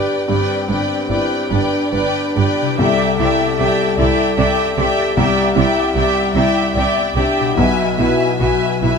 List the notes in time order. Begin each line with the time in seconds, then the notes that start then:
Already playing: G2 D4 E4 G4 B4 D5 G5
0.28 G1 G2 C4 B4 D5 G5
0.68 G1 G2 D4 B4 D5 G5
1.09 G1 G2 E4 B4 D5 G5
1.49 G1 G2 D4 B4 D5 G5
1.92 G1 G2 B4 D5 G5
2.35 G1 G2 G4 B4 D5 G5
2.61 C3
2.66 E4
2.71 G4
2.75 C2 C3 A4 D5 E5
2.79 C2 D5 G5
3.19 C2 C3 E4 D5 E5 G5
3.58 C2 C3 G4 D5 E5 G5
3.98 C2 C3 E4 D5 E5 G5
4.37 C2 C3 D5 E5 G5
4.77 C2 C3 G4 D5 E5 G5
5.17 C2 C3 G4 D5 E5 G5
5.55 C2 C3 E4 D5 E5 G5
5.95 C2 C3 G4 D5 E5 G5
6.34 C2 C3 E4 D5 E5 G5
6.75 C2 C3 D5 E5 G5
7.15 C2 C3 D4 G4 D5 E5 G5
7.40 B2
7.45 E4
7.49 G#4
7.54 B1 F#4 B4 E5
7.58 B2 B4 G#5
7.98 B1 B2 E4 B4 E5 G#5
8.39 B1 B2 F#4 B4 E5 G#5
8.82 B1 B2 E4 B4 E5 G#5